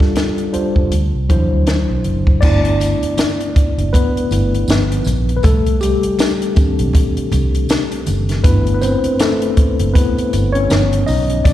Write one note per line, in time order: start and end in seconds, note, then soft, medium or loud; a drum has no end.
0.00 0.15 G3 loud
0.00 0.15 D4 medium
0.00 0.15 F4 medium
0.00 0.15 A4 loud
0.00 muted fingered electric bass stroke soft
0.00 kick medium
0.00 snare soft
0.16 snare medium
0.16 closed hi-hat medium
0.16 high conga medium
0.38 closed hi-hat soft
0.53 0.91 G3 medium
0.53 0.91 D4 medium
0.53 0.92 F4 medium
0.53 0.92 C5 medium
0.53 muted fingered electric bass stroke soft
0.53 closed hi-hat medium
0.76 0.89 F1 medium
0.76 kick medium
0.92 1.11 D2 medium
0.92 closed hi-hat medium
1.15 1.28 C2 medium
1.29 1.48 E2 medium
1.29 2.03 F#3 medium
1.29 2.04 D4 medium
1.29 2.04 E4 medium
1.29 2.04 C5 medium
1.29 kick medium
1.29 closed hi-hat medium
1.29 muted conga soft
1.29 low conga medium
1.52 1.84 D2 medium
1.67 snare loud
1.67 closed hi-hat medium
1.67 high conga medium
1.90 2.03 B1 medium
2.04 2.37 F#1 medium
2.04 closed hi-hat medium
2.04 high conga medium
2.27 kick medium
2.41 2.93 G1 loud
2.41 4.30 A3 medium
2.41 3.93 B3 medium
2.41 3.52 D4 medium
2.41 4.31 E4 medium
2.41 3.51 D5 loud
2.41 kick loud
2.41 crash medium
2.41 tambourine soft
2.41 muted conga medium
2.65 closed hi-hat soft
2.80 closed hi-hat medium
2.80 tambourine soft
2.80 muted conga medium
3.03 muted fingered electric bass stroke soft
3.03 closed hi-hat medium
3.18 snare loud
3.18 closed hi-hat medium
3.18 tambourine medium
3.18 high conga medium
3.41 closed hi-hat soft
3.56 muted fingered electric bass stroke soft
3.56 kick medium
3.56 closed hi-hat medium
3.78 3.91 F#1 medium
3.78 closed hi-hat medium
3.93 4.30 B3 medium
3.93 5.35 B4 loud
3.93 kick medium
3.93 closed hi-hat medium
3.93 muted conga soft
3.93 low conga medium
4.16 muted fingered electric bass stroke soft
4.16 closed hi-hat soft
4.31 4.63 G1 medium
4.31 4.65 A3 soft
4.31 4.65 B3 soft
4.31 4.65 E4 medium
4.31 closed hi-hat medium
4.31 tambourine soft
4.31 muted conga medium
4.54 closed hi-hat soft
4.68 5.00 G1 medium
4.68 5.40 F3 medium
4.68 5.40 B3 medium
4.68 5.40 D#4 medium
4.68 snare loud
4.68 closed hi-hat medium
4.68 tambourine medium
4.68 high conga medium
4.92 closed hi-hat medium
5.04 5.38 A#1 medium
5.04 closed hi-hat medium
5.04 tambourine medium
5.04 high conga medium
5.29 closed hi-hat soft
5.36 5.43 B4 medium
5.43 5.94 C2 loud
5.43 5.80 A3 medium
5.43 5.82 A4 loud
5.43 kick loud
5.43 closed hi-hat medium
5.43 tambourine soft
5.43 muted conga medium
5.66 closed hi-hat soft
5.81 8.04 G3 medium
5.81 8.03 G4 medium
5.81 closed hi-hat medium
5.81 tambourine soft
5.81 muted conga medium
6.03 muted fingered electric bass stroke soft
6.03 closed hi-hat medium
6.19 snare loud
6.19 closed hi-hat medium
6.19 tambourine medium
6.19 high conga medium
6.42 closed hi-hat medium
6.55 7.65 D#3 medium
6.55 7.65 C4 soft
6.55 7.66 D4 medium
6.55 muted fingered electric bass stroke soft
6.55 kick loud
6.55 closed hi-hat medium
6.55 tambourine soft
6.79 6.92 B1 medium
6.79 closed hi-hat medium
6.93 kick medium
6.93 closed hi-hat medium
6.93 tambourine soft
6.93 muted conga soft
6.93 low conga medium
7.17 muted fingered electric bass stroke soft
7.17 closed hi-hat soft
7.32 7.64 C2 loud
7.32 closed hi-hat medium
7.32 tambourine soft
7.32 muted conga medium
7.32 low conga medium
7.55 closed hi-hat soft
7.69 snare loud
7.69 closed hi-hat medium
7.69 tambourine medium
7.69 high conga medium
7.92 closed hi-hat medium
8.06 8.39 F#1 medium
8.06 closed hi-hat medium
8.06 tambourine medium
8.06 high conga medium
8.29 snare soft
8.29 closed hi-hat soft
8.43 8.95 G1 loud
8.43 9.20 A3 medium
8.43 8.75 B3 medium
8.43 10.66 D4 medium
8.43 9.93 E4 medium
8.43 8.73 B4 loud
8.43 kick loud
8.43 closed hi-hat medium
8.43 tambourine soft
8.43 muted conga medium
8.67 closed hi-hat soft
8.74 8.81 B4 medium
8.81 9.18 C4 medium
8.81 9.21 C5 medium
8.81 closed hi-hat medium
8.81 tambourine medium
8.81 muted conga medium
9.04 muted fingered electric bass stroke soft
9.04 closed hi-hat medium
9.19 9.92 A3 medium
9.19 9.98 A4 medium
9.19 snare loud
9.19 closed hi-hat medium
9.19 tambourine medium
9.19 high conga medium
9.42 closed hi-hat soft
9.57 muted fingered electric bass stroke soft
9.57 kick medium
9.57 closed hi-hat medium
9.79 9.93 F#1 medium
9.79 closed hi-hat medium
9.94 10.28 A3 soft
9.94 10.51 B3 medium
9.94 10.29 E4 medium
9.94 10.56 B4 medium
9.94 kick medium
9.94 closed hi-hat medium
9.94 tambourine soft
9.94 muted conga soft
9.94 low conga medium
10.18 muted fingered electric bass stroke soft
10.18 closed hi-hat medium
10.33 10.65 G1 medium
10.33 closed hi-hat medium
10.33 tambourine soft
10.33 muted conga medium
10.53 11.04 C#4 medium
10.53 11.09 C#5 loud
10.53 closed hi-hat soft
10.69 11.02 G1 loud
10.69 11.41 F3 medium
10.69 11.42 B3 medium
10.69 11.07 D#4 medium
10.69 snare loud
10.69 closed hi-hat medium
10.69 tambourine medium
10.69 high conga medium
10.93 closed hi-hat medium
11.06 11.40 B1 medium
11.06 11.43 D#4 medium
11.06 11.46 D#5 loud
11.06 open hi-hat medium
11.06 tambourine medium
11.06 high conga medium
11.30 closed hi-hat soft
11.44 11.53 C2 loud
11.44 11.53 D#3 medium
11.44 11.53 C4 medium
11.44 11.53 D4 medium
11.44 11.53 D5 loud
11.44 kick loud
11.44 closed hi-hat medium
11.44 tambourine soft
11.44 muted conga medium